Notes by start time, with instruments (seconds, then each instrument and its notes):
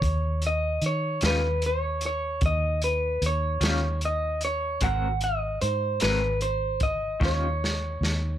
Already playing: clean electric guitar C#5
0.01 fingered electric bass D#2, kick, closed hi-hat
0.42 closed hi-hat
0.47 clean electric guitar D#5
0.82 fingered electric bass D#3, closed hi-hat
0.86 clean electric guitar C#5
1.21 fingered electric bass D#2, clean electric guitar D#3 G3 C#4 F4, snare, closed hi-hat
1.26 clean electric guitar B4
1.62 closed hi-hat
1.66 clean electric guitar C#5
2.01 closed hi-hat
2.06 clean electric guitar C#5
2.41 fingered electric bass D#2, kick, closed hi-hat
2.46 clean electric guitar D#5
2.82 clean electric guitar B4, closed hi-hat
3.22 fingered electric bass D#2, closed hi-hat
3.26 clean electric guitar C#5
3.61 fingered electric bass D#2, clean electric guitar D#3 G3 C#4 F4, snare, closed hi-hat
4.01 closed hi-hat
4.05 clean electric guitar D#5
4.41 clean electric guitar C#5, closed hi-hat
4.81 fingered electric bass G#1, clean electric guitar G#3 C4 F#4 A#4 F#5, kick, closed hi-hat
5.21 clean electric guitar D#5, closed hi-hat
5.61 fingered electric bass G#2, clean electric guitar C5, closed hi-hat
6.00 fingered electric bass G#1, clean electric guitar G#3 C4 F#4 A#4 B4, snare, closed hi-hat
6.41 clean electric guitar C5, closed hi-hat
6.80 clean electric guitar D#5, kick, closed hi-hat
7.20 fingered electric bass D#2, clean electric guitar D#3 G3 C#4 F4, kick, snare
7.25 clean electric guitar C#5
7.64 snare
8.01 fingered electric bass D#2, snare